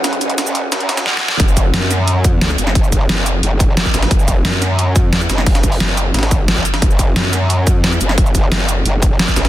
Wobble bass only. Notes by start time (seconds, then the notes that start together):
Already playing: F#1
0.38 F#1
0.72 F#2
1.40 F#1
1.74 F#2
2.58 F#1
3.09 F#1
3.43 F#1
3.94 A1
4.11 F#1
4.45 F#2
5.04 F2
5.30 F#1
5.80 F#1
6.14 G#1
6.82 F#1
7.16 F#2
7.75 F2
8.01 F#1
8.52 F#1
8.86 F#1
9.36 A1